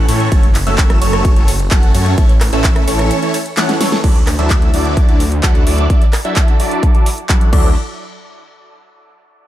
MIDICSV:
0, 0, Header, 1, 4, 480
1, 0, Start_track
1, 0, Key_signature, 2, "major"
1, 0, Tempo, 465116
1, 328, Time_signature, 4, 2, 24, 8
1, 9777, End_track
2, 0, Start_track
2, 0, Title_t, "Supersaw synth"
2, 0, Program_c, 0, 81
2, 88, Note_on_c, 0, 52, 77
2, 88, Note_on_c, 0, 57, 75
2, 88, Note_on_c, 0, 61, 72
2, 88, Note_on_c, 0, 69, 68
2, 88, Note_on_c, 0, 73, 89
2, 292, Note_off_c, 0, 52, 0
2, 292, Note_off_c, 0, 57, 0
2, 292, Note_off_c, 0, 61, 0
2, 292, Note_off_c, 0, 69, 0
2, 292, Note_off_c, 0, 73, 0
2, 328, Note_on_c, 0, 54, 78
2, 328, Note_on_c, 0, 57, 75
2, 328, Note_on_c, 0, 61, 73
2, 328, Note_on_c, 0, 69, 76
2, 328, Note_on_c, 0, 73, 91
2, 472, Note_off_c, 0, 54, 0
2, 472, Note_off_c, 0, 57, 0
2, 472, Note_off_c, 0, 61, 0
2, 472, Note_off_c, 0, 69, 0
2, 472, Note_off_c, 0, 73, 0
2, 688, Note_on_c, 0, 54, 80
2, 688, Note_on_c, 0, 57, 75
2, 688, Note_on_c, 0, 61, 74
2, 688, Note_on_c, 0, 69, 71
2, 688, Note_on_c, 0, 76, 86
2, 1019, Note_off_c, 0, 54, 0
2, 1019, Note_off_c, 0, 57, 0
2, 1019, Note_off_c, 0, 61, 0
2, 1019, Note_off_c, 0, 69, 0
2, 1019, Note_off_c, 0, 76, 0
2, 1048, Note_on_c, 0, 54, 92
2, 1048, Note_on_c, 0, 57, 89
2, 1048, Note_on_c, 0, 61, 83
2, 1048, Note_on_c, 0, 69, 85
2, 1048, Note_on_c, 0, 73, 104
2, 1379, Note_off_c, 0, 54, 0
2, 1379, Note_off_c, 0, 57, 0
2, 1379, Note_off_c, 0, 61, 0
2, 1379, Note_off_c, 0, 69, 0
2, 1379, Note_off_c, 0, 73, 0
2, 1408, Note_on_c, 0, 54, 82
2, 1408, Note_on_c, 0, 57, 76
2, 1408, Note_on_c, 0, 61, 71
2, 1408, Note_on_c, 0, 69, 73
2, 1408, Note_on_c, 0, 73, 89
2, 1552, Note_off_c, 0, 54, 0
2, 1552, Note_off_c, 0, 57, 0
2, 1552, Note_off_c, 0, 61, 0
2, 1552, Note_off_c, 0, 69, 0
2, 1552, Note_off_c, 0, 73, 0
2, 1768, Note_on_c, 0, 54, 88
2, 1768, Note_on_c, 0, 57, 79
2, 1768, Note_on_c, 0, 61, 83
2, 1768, Note_on_c, 0, 69, 82
2, 1768, Note_on_c, 0, 78, 98
2, 1979, Note_off_c, 0, 54, 0
2, 1979, Note_off_c, 0, 57, 0
2, 1979, Note_off_c, 0, 61, 0
2, 1979, Note_off_c, 0, 69, 0
2, 1979, Note_off_c, 0, 78, 0
2, 2008, Note_on_c, 0, 54, 73
2, 2008, Note_on_c, 0, 57, 72
2, 2008, Note_on_c, 0, 61, 69
2, 2008, Note_on_c, 0, 69, 72
2, 2008, Note_on_c, 0, 73, 83
2, 2212, Note_off_c, 0, 54, 0
2, 2212, Note_off_c, 0, 57, 0
2, 2212, Note_off_c, 0, 61, 0
2, 2212, Note_off_c, 0, 69, 0
2, 2212, Note_off_c, 0, 73, 0
2, 2248, Note_on_c, 0, 52, 82
2, 2248, Note_on_c, 0, 57, 74
2, 2248, Note_on_c, 0, 61, 70
2, 2248, Note_on_c, 0, 69, 74
2, 2248, Note_on_c, 0, 73, 89
2, 2392, Note_off_c, 0, 52, 0
2, 2392, Note_off_c, 0, 57, 0
2, 2392, Note_off_c, 0, 61, 0
2, 2392, Note_off_c, 0, 69, 0
2, 2392, Note_off_c, 0, 73, 0
2, 2608, Note_on_c, 0, 52, 79
2, 2608, Note_on_c, 0, 57, 73
2, 2608, Note_on_c, 0, 61, 73
2, 2608, Note_on_c, 0, 69, 72
2, 2608, Note_on_c, 0, 76, 87
2, 2939, Note_off_c, 0, 52, 0
2, 2939, Note_off_c, 0, 57, 0
2, 2939, Note_off_c, 0, 61, 0
2, 2939, Note_off_c, 0, 69, 0
2, 2939, Note_off_c, 0, 76, 0
2, 2968, Note_on_c, 0, 52, 96
2, 2968, Note_on_c, 0, 57, 86
2, 2968, Note_on_c, 0, 61, 85
2, 2968, Note_on_c, 0, 73, 103
2, 2969, Note_on_c, 0, 69, 88
2, 3299, Note_off_c, 0, 52, 0
2, 3299, Note_off_c, 0, 57, 0
2, 3299, Note_off_c, 0, 61, 0
2, 3299, Note_off_c, 0, 69, 0
2, 3299, Note_off_c, 0, 73, 0
2, 3328, Note_on_c, 0, 52, 78
2, 3328, Note_on_c, 0, 57, 72
2, 3328, Note_on_c, 0, 61, 78
2, 3328, Note_on_c, 0, 69, 73
2, 3328, Note_on_c, 0, 73, 89
2, 3472, Note_off_c, 0, 52, 0
2, 3472, Note_off_c, 0, 57, 0
2, 3472, Note_off_c, 0, 61, 0
2, 3472, Note_off_c, 0, 69, 0
2, 3472, Note_off_c, 0, 73, 0
2, 3688, Note_on_c, 0, 52, 88
2, 3688, Note_on_c, 0, 57, 83
2, 3688, Note_on_c, 0, 61, 82
2, 3688, Note_on_c, 0, 69, 78
2, 3688, Note_on_c, 0, 78, 98
2, 3899, Note_off_c, 0, 52, 0
2, 3899, Note_off_c, 0, 57, 0
2, 3899, Note_off_c, 0, 61, 0
2, 3899, Note_off_c, 0, 69, 0
2, 3899, Note_off_c, 0, 78, 0
2, 3928, Note_on_c, 0, 52, 79
2, 3928, Note_on_c, 0, 57, 71
2, 3928, Note_on_c, 0, 61, 70
2, 3928, Note_on_c, 0, 69, 73
2, 3928, Note_on_c, 0, 73, 81
2, 4132, Note_off_c, 0, 52, 0
2, 4132, Note_off_c, 0, 57, 0
2, 4132, Note_off_c, 0, 61, 0
2, 4132, Note_off_c, 0, 69, 0
2, 4132, Note_off_c, 0, 73, 0
2, 4168, Note_on_c, 0, 54, 81
2, 4168, Note_on_c, 0, 62, 70
2, 4168, Note_on_c, 0, 64, 71
2, 4168, Note_on_c, 0, 69, 70
2, 4168, Note_on_c, 0, 74, 90
2, 4312, Note_off_c, 0, 54, 0
2, 4312, Note_off_c, 0, 62, 0
2, 4313, Note_off_c, 0, 64, 0
2, 4313, Note_off_c, 0, 69, 0
2, 4313, Note_off_c, 0, 74, 0
2, 4528, Note_on_c, 0, 54, 80
2, 4528, Note_on_c, 0, 62, 72
2, 4528, Note_on_c, 0, 64, 73
2, 4528, Note_on_c, 0, 69, 69
2, 4528, Note_on_c, 0, 76, 90
2, 4859, Note_off_c, 0, 54, 0
2, 4859, Note_off_c, 0, 62, 0
2, 4859, Note_off_c, 0, 64, 0
2, 4859, Note_off_c, 0, 69, 0
2, 4859, Note_off_c, 0, 76, 0
2, 4888, Note_on_c, 0, 54, 88
2, 4888, Note_on_c, 0, 62, 86
2, 4888, Note_on_c, 0, 64, 88
2, 4888, Note_on_c, 0, 69, 81
2, 4888, Note_on_c, 0, 74, 99
2, 5219, Note_off_c, 0, 54, 0
2, 5219, Note_off_c, 0, 62, 0
2, 5219, Note_off_c, 0, 64, 0
2, 5219, Note_off_c, 0, 69, 0
2, 5219, Note_off_c, 0, 74, 0
2, 5248, Note_on_c, 0, 54, 83
2, 5248, Note_on_c, 0, 62, 74
2, 5248, Note_on_c, 0, 64, 73
2, 5248, Note_on_c, 0, 69, 71
2, 5248, Note_on_c, 0, 74, 83
2, 5392, Note_off_c, 0, 54, 0
2, 5392, Note_off_c, 0, 62, 0
2, 5392, Note_off_c, 0, 64, 0
2, 5392, Note_off_c, 0, 69, 0
2, 5392, Note_off_c, 0, 74, 0
2, 5608, Note_on_c, 0, 54, 86
2, 5608, Note_on_c, 0, 62, 77
2, 5608, Note_on_c, 0, 64, 77
2, 5608, Note_on_c, 0, 69, 78
2, 5608, Note_on_c, 0, 78, 94
2, 5819, Note_off_c, 0, 54, 0
2, 5819, Note_off_c, 0, 62, 0
2, 5819, Note_off_c, 0, 64, 0
2, 5819, Note_off_c, 0, 69, 0
2, 5819, Note_off_c, 0, 78, 0
2, 5848, Note_on_c, 0, 54, 76
2, 5848, Note_on_c, 0, 62, 72
2, 5848, Note_on_c, 0, 64, 72
2, 5848, Note_on_c, 0, 69, 68
2, 5848, Note_on_c, 0, 74, 85
2, 6052, Note_off_c, 0, 54, 0
2, 6052, Note_off_c, 0, 62, 0
2, 6052, Note_off_c, 0, 64, 0
2, 6052, Note_off_c, 0, 69, 0
2, 6052, Note_off_c, 0, 74, 0
2, 6088, Note_on_c, 0, 54, 79
2, 6088, Note_on_c, 0, 62, 72
2, 6088, Note_on_c, 0, 64, 77
2, 6088, Note_on_c, 0, 69, 75
2, 6088, Note_on_c, 0, 74, 82
2, 6232, Note_off_c, 0, 62, 0
2, 6232, Note_off_c, 0, 64, 0
2, 6232, Note_off_c, 0, 69, 0
2, 6232, Note_off_c, 0, 74, 0
2, 6233, Note_off_c, 0, 54, 0
2, 6448, Note_on_c, 0, 54, 83
2, 6448, Note_on_c, 0, 62, 70
2, 6448, Note_on_c, 0, 64, 73
2, 6448, Note_on_c, 0, 69, 76
2, 6448, Note_on_c, 0, 76, 82
2, 6779, Note_off_c, 0, 54, 0
2, 6779, Note_off_c, 0, 62, 0
2, 6779, Note_off_c, 0, 64, 0
2, 6779, Note_off_c, 0, 69, 0
2, 6779, Note_off_c, 0, 76, 0
2, 6808, Note_on_c, 0, 54, 99
2, 6808, Note_on_c, 0, 62, 83
2, 6808, Note_on_c, 0, 64, 86
2, 6808, Note_on_c, 0, 69, 88
2, 6808, Note_on_c, 0, 74, 107
2, 7139, Note_off_c, 0, 54, 0
2, 7139, Note_off_c, 0, 62, 0
2, 7139, Note_off_c, 0, 64, 0
2, 7139, Note_off_c, 0, 69, 0
2, 7139, Note_off_c, 0, 74, 0
2, 7168, Note_on_c, 0, 54, 77
2, 7168, Note_on_c, 0, 62, 74
2, 7168, Note_on_c, 0, 64, 69
2, 7168, Note_on_c, 0, 69, 73
2, 7168, Note_on_c, 0, 74, 89
2, 7312, Note_off_c, 0, 54, 0
2, 7312, Note_off_c, 0, 62, 0
2, 7312, Note_off_c, 0, 64, 0
2, 7312, Note_off_c, 0, 69, 0
2, 7312, Note_off_c, 0, 74, 0
2, 7528, Note_on_c, 0, 54, 84
2, 7528, Note_on_c, 0, 62, 81
2, 7528, Note_on_c, 0, 64, 82
2, 7528, Note_on_c, 0, 69, 83
2, 7528, Note_on_c, 0, 78, 97
2, 7739, Note_off_c, 0, 54, 0
2, 7739, Note_off_c, 0, 62, 0
2, 7739, Note_off_c, 0, 64, 0
2, 7739, Note_off_c, 0, 69, 0
2, 7739, Note_off_c, 0, 78, 0
2, 7768, Note_on_c, 0, 54, 87
2, 7768, Note_on_c, 0, 62, 77
2, 7768, Note_on_c, 0, 64, 78
2, 7768, Note_on_c, 0, 69, 83
2, 7768, Note_on_c, 0, 74, 97
2, 7947, Note_off_c, 0, 54, 0
2, 7947, Note_off_c, 0, 62, 0
2, 7947, Note_off_c, 0, 64, 0
2, 7947, Note_off_c, 0, 69, 0
2, 7947, Note_off_c, 0, 74, 0
2, 9777, End_track
3, 0, Start_track
3, 0, Title_t, "Detuned saw bass"
3, 0, Program_c, 1, 39
3, 88, Note_on_c, 1, 45, 100
3, 304, Note_off_c, 1, 45, 0
3, 328, Note_on_c, 1, 30, 96
3, 664, Note_off_c, 1, 30, 0
3, 688, Note_on_c, 1, 30, 99
3, 1024, Note_off_c, 1, 30, 0
3, 1048, Note_on_c, 1, 30, 98
3, 1384, Note_off_c, 1, 30, 0
3, 1408, Note_on_c, 1, 30, 94
3, 1744, Note_off_c, 1, 30, 0
3, 1768, Note_on_c, 1, 30, 98
3, 1984, Note_off_c, 1, 30, 0
3, 2008, Note_on_c, 1, 42, 92
3, 2224, Note_off_c, 1, 42, 0
3, 2248, Note_on_c, 1, 33, 100
3, 2584, Note_off_c, 1, 33, 0
3, 2608, Note_on_c, 1, 33, 100
3, 2944, Note_off_c, 1, 33, 0
3, 2968, Note_on_c, 1, 33, 102
3, 3208, Note_off_c, 1, 33, 0
3, 4168, Note_on_c, 1, 38, 94
3, 4504, Note_off_c, 1, 38, 0
3, 4528, Note_on_c, 1, 38, 96
3, 4864, Note_off_c, 1, 38, 0
3, 4888, Note_on_c, 1, 38, 101
3, 5224, Note_off_c, 1, 38, 0
3, 5248, Note_on_c, 1, 38, 97
3, 5584, Note_off_c, 1, 38, 0
3, 5608, Note_on_c, 1, 38, 95
3, 5824, Note_off_c, 1, 38, 0
3, 5848, Note_on_c, 1, 38, 96
3, 6064, Note_off_c, 1, 38, 0
3, 7768, Note_on_c, 1, 38, 101
3, 7991, Note_off_c, 1, 38, 0
3, 9777, End_track
4, 0, Start_track
4, 0, Title_t, "Drums"
4, 88, Note_on_c, 9, 46, 104
4, 88, Note_on_c, 9, 51, 78
4, 191, Note_off_c, 9, 46, 0
4, 191, Note_off_c, 9, 51, 0
4, 208, Note_on_c, 9, 42, 40
4, 311, Note_off_c, 9, 42, 0
4, 328, Note_on_c, 9, 36, 119
4, 328, Note_on_c, 9, 42, 72
4, 328, Note_on_c, 9, 51, 61
4, 431, Note_off_c, 9, 36, 0
4, 431, Note_off_c, 9, 42, 0
4, 431, Note_off_c, 9, 51, 0
4, 448, Note_on_c, 9, 42, 44
4, 551, Note_off_c, 9, 42, 0
4, 565, Note_on_c, 9, 39, 57
4, 568, Note_on_c, 9, 46, 95
4, 568, Note_on_c, 9, 51, 79
4, 668, Note_off_c, 9, 39, 0
4, 671, Note_off_c, 9, 46, 0
4, 671, Note_off_c, 9, 51, 0
4, 688, Note_on_c, 9, 42, 42
4, 791, Note_off_c, 9, 42, 0
4, 805, Note_on_c, 9, 39, 125
4, 808, Note_on_c, 9, 36, 117
4, 808, Note_on_c, 9, 42, 68
4, 808, Note_on_c, 9, 51, 65
4, 908, Note_off_c, 9, 39, 0
4, 911, Note_off_c, 9, 36, 0
4, 911, Note_off_c, 9, 42, 0
4, 911, Note_off_c, 9, 51, 0
4, 928, Note_on_c, 9, 37, 77
4, 928, Note_on_c, 9, 42, 40
4, 1031, Note_off_c, 9, 37, 0
4, 1031, Note_off_c, 9, 42, 0
4, 1048, Note_on_c, 9, 46, 99
4, 1048, Note_on_c, 9, 51, 83
4, 1152, Note_off_c, 9, 46, 0
4, 1152, Note_off_c, 9, 51, 0
4, 1168, Note_on_c, 9, 37, 73
4, 1168, Note_on_c, 9, 42, 42
4, 1271, Note_off_c, 9, 37, 0
4, 1271, Note_off_c, 9, 42, 0
4, 1288, Note_on_c, 9, 36, 113
4, 1288, Note_on_c, 9, 42, 73
4, 1288, Note_on_c, 9, 51, 63
4, 1391, Note_off_c, 9, 36, 0
4, 1391, Note_off_c, 9, 42, 0
4, 1391, Note_off_c, 9, 51, 0
4, 1408, Note_on_c, 9, 42, 42
4, 1511, Note_off_c, 9, 42, 0
4, 1527, Note_on_c, 9, 46, 104
4, 1527, Note_on_c, 9, 51, 83
4, 1631, Note_off_c, 9, 46, 0
4, 1631, Note_off_c, 9, 51, 0
4, 1647, Note_on_c, 9, 42, 41
4, 1750, Note_off_c, 9, 42, 0
4, 1764, Note_on_c, 9, 39, 118
4, 1767, Note_on_c, 9, 42, 72
4, 1767, Note_on_c, 9, 51, 59
4, 1768, Note_on_c, 9, 36, 126
4, 1868, Note_off_c, 9, 39, 0
4, 1871, Note_off_c, 9, 36, 0
4, 1871, Note_off_c, 9, 42, 0
4, 1871, Note_off_c, 9, 51, 0
4, 1887, Note_on_c, 9, 42, 39
4, 1991, Note_off_c, 9, 42, 0
4, 2007, Note_on_c, 9, 46, 102
4, 2007, Note_on_c, 9, 51, 83
4, 2111, Note_off_c, 9, 46, 0
4, 2111, Note_off_c, 9, 51, 0
4, 2127, Note_on_c, 9, 42, 42
4, 2231, Note_off_c, 9, 42, 0
4, 2247, Note_on_c, 9, 42, 69
4, 2247, Note_on_c, 9, 51, 60
4, 2248, Note_on_c, 9, 36, 117
4, 2351, Note_off_c, 9, 36, 0
4, 2351, Note_off_c, 9, 42, 0
4, 2351, Note_off_c, 9, 51, 0
4, 2367, Note_on_c, 9, 42, 45
4, 2471, Note_off_c, 9, 42, 0
4, 2484, Note_on_c, 9, 39, 61
4, 2488, Note_on_c, 9, 37, 77
4, 2488, Note_on_c, 9, 46, 100
4, 2488, Note_on_c, 9, 51, 77
4, 2588, Note_off_c, 9, 39, 0
4, 2591, Note_off_c, 9, 37, 0
4, 2591, Note_off_c, 9, 46, 0
4, 2591, Note_off_c, 9, 51, 0
4, 2607, Note_on_c, 9, 42, 44
4, 2710, Note_off_c, 9, 42, 0
4, 2724, Note_on_c, 9, 39, 127
4, 2727, Note_on_c, 9, 42, 75
4, 2727, Note_on_c, 9, 51, 60
4, 2728, Note_on_c, 9, 36, 117
4, 2827, Note_off_c, 9, 39, 0
4, 2831, Note_off_c, 9, 36, 0
4, 2831, Note_off_c, 9, 42, 0
4, 2831, Note_off_c, 9, 51, 0
4, 2848, Note_on_c, 9, 37, 74
4, 2848, Note_on_c, 9, 42, 40
4, 2951, Note_off_c, 9, 37, 0
4, 2951, Note_off_c, 9, 42, 0
4, 2968, Note_on_c, 9, 46, 107
4, 2968, Note_on_c, 9, 51, 82
4, 3071, Note_off_c, 9, 46, 0
4, 3071, Note_off_c, 9, 51, 0
4, 3088, Note_on_c, 9, 37, 69
4, 3088, Note_on_c, 9, 42, 45
4, 3191, Note_off_c, 9, 37, 0
4, 3191, Note_off_c, 9, 42, 0
4, 3208, Note_on_c, 9, 42, 70
4, 3208, Note_on_c, 9, 51, 57
4, 3311, Note_off_c, 9, 42, 0
4, 3311, Note_off_c, 9, 51, 0
4, 3328, Note_on_c, 9, 42, 41
4, 3431, Note_off_c, 9, 42, 0
4, 3448, Note_on_c, 9, 46, 104
4, 3448, Note_on_c, 9, 51, 85
4, 3551, Note_off_c, 9, 46, 0
4, 3551, Note_off_c, 9, 51, 0
4, 3568, Note_on_c, 9, 42, 41
4, 3671, Note_off_c, 9, 42, 0
4, 3685, Note_on_c, 9, 39, 127
4, 3688, Note_on_c, 9, 38, 63
4, 3688, Note_on_c, 9, 42, 67
4, 3688, Note_on_c, 9, 51, 60
4, 3788, Note_off_c, 9, 39, 0
4, 3791, Note_off_c, 9, 38, 0
4, 3791, Note_off_c, 9, 42, 0
4, 3791, Note_off_c, 9, 51, 0
4, 3808, Note_on_c, 9, 38, 64
4, 3808, Note_on_c, 9, 42, 43
4, 3911, Note_off_c, 9, 38, 0
4, 3911, Note_off_c, 9, 42, 0
4, 3928, Note_on_c, 9, 38, 86
4, 3928, Note_on_c, 9, 46, 98
4, 3928, Note_on_c, 9, 51, 81
4, 4031, Note_off_c, 9, 38, 0
4, 4031, Note_off_c, 9, 46, 0
4, 4031, Note_off_c, 9, 51, 0
4, 4048, Note_on_c, 9, 38, 84
4, 4048, Note_on_c, 9, 42, 45
4, 4152, Note_off_c, 9, 38, 0
4, 4152, Note_off_c, 9, 42, 0
4, 4168, Note_on_c, 9, 36, 113
4, 4168, Note_on_c, 9, 42, 68
4, 4168, Note_on_c, 9, 49, 93
4, 4271, Note_off_c, 9, 36, 0
4, 4271, Note_off_c, 9, 42, 0
4, 4271, Note_off_c, 9, 49, 0
4, 4288, Note_on_c, 9, 42, 42
4, 4391, Note_off_c, 9, 42, 0
4, 4405, Note_on_c, 9, 39, 59
4, 4408, Note_on_c, 9, 37, 67
4, 4408, Note_on_c, 9, 46, 97
4, 4508, Note_off_c, 9, 39, 0
4, 4511, Note_off_c, 9, 37, 0
4, 4511, Note_off_c, 9, 46, 0
4, 4528, Note_on_c, 9, 42, 42
4, 4632, Note_off_c, 9, 42, 0
4, 4645, Note_on_c, 9, 39, 127
4, 4648, Note_on_c, 9, 36, 114
4, 4648, Note_on_c, 9, 42, 70
4, 4748, Note_off_c, 9, 39, 0
4, 4751, Note_off_c, 9, 36, 0
4, 4751, Note_off_c, 9, 42, 0
4, 4768, Note_on_c, 9, 42, 39
4, 4872, Note_off_c, 9, 42, 0
4, 4888, Note_on_c, 9, 46, 106
4, 4992, Note_off_c, 9, 46, 0
4, 5008, Note_on_c, 9, 42, 41
4, 5112, Note_off_c, 9, 42, 0
4, 5128, Note_on_c, 9, 36, 118
4, 5129, Note_on_c, 9, 42, 68
4, 5231, Note_off_c, 9, 36, 0
4, 5232, Note_off_c, 9, 42, 0
4, 5249, Note_on_c, 9, 42, 41
4, 5352, Note_off_c, 9, 42, 0
4, 5369, Note_on_c, 9, 46, 110
4, 5472, Note_off_c, 9, 46, 0
4, 5489, Note_on_c, 9, 42, 40
4, 5592, Note_off_c, 9, 42, 0
4, 5606, Note_on_c, 9, 39, 122
4, 5608, Note_on_c, 9, 36, 123
4, 5609, Note_on_c, 9, 42, 68
4, 5709, Note_off_c, 9, 39, 0
4, 5711, Note_off_c, 9, 36, 0
4, 5712, Note_off_c, 9, 42, 0
4, 5728, Note_on_c, 9, 42, 38
4, 5832, Note_off_c, 9, 42, 0
4, 5848, Note_on_c, 9, 46, 100
4, 5951, Note_off_c, 9, 46, 0
4, 6088, Note_on_c, 9, 36, 127
4, 6088, Note_on_c, 9, 42, 66
4, 6191, Note_off_c, 9, 36, 0
4, 6192, Note_off_c, 9, 42, 0
4, 6209, Note_on_c, 9, 42, 42
4, 6312, Note_off_c, 9, 42, 0
4, 6325, Note_on_c, 9, 39, 56
4, 6329, Note_on_c, 9, 37, 71
4, 6329, Note_on_c, 9, 46, 102
4, 6429, Note_off_c, 9, 39, 0
4, 6432, Note_off_c, 9, 37, 0
4, 6432, Note_off_c, 9, 46, 0
4, 6448, Note_on_c, 9, 42, 41
4, 6551, Note_off_c, 9, 42, 0
4, 6565, Note_on_c, 9, 39, 127
4, 6568, Note_on_c, 9, 36, 120
4, 6568, Note_on_c, 9, 42, 70
4, 6668, Note_off_c, 9, 39, 0
4, 6671, Note_off_c, 9, 36, 0
4, 6671, Note_off_c, 9, 42, 0
4, 6688, Note_on_c, 9, 42, 38
4, 6791, Note_off_c, 9, 42, 0
4, 6808, Note_on_c, 9, 46, 111
4, 6912, Note_off_c, 9, 46, 0
4, 6929, Note_on_c, 9, 42, 43
4, 7032, Note_off_c, 9, 42, 0
4, 7048, Note_on_c, 9, 36, 117
4, 7048, Note_on_c, 9, 42, 66
4, 7151, Note_off_c, 9, 36, 0
4, 7152, Note_off_c, 9, 42, 0
4, 7169, Note_on_c, 9, 42, 38
4, 7272, Note_off_c, 9, 42, 0
4, 7288, Note_on_c, 9, 46, 107
4, 7392, Note_off_c, 9, 46, 0
4, 7409, Note_on_c, 9, 42, 37
4, 7512, Note_off_c, 9, 42, 0
4, 7525, Note_on_c, 9, 39, 125
4, 7528, Note_on_c, 9, 36, 122
4, 7528, Note_on_c, 9, 42, 69
4, 7629, Note_off_c, 9, 39, 0
4, 7631, Note_off_c, 9, 36, 0
4, 7632, Note_off_c, 9, 42, 0
4, 7648, Note_on_c, 9, 42, 42
4, 7752, Note_off_c, 9, 42, 0
4, 7768, Note_on_c, 9, 36, 111
4, 7768, Note_on_c, 9, 57, 87
4, 7871, Note_off_c, 9, 36, 0
4, 7872, Note_off_c, 9, 57, 0
4, 9777, End_track
0, 0, End_of_file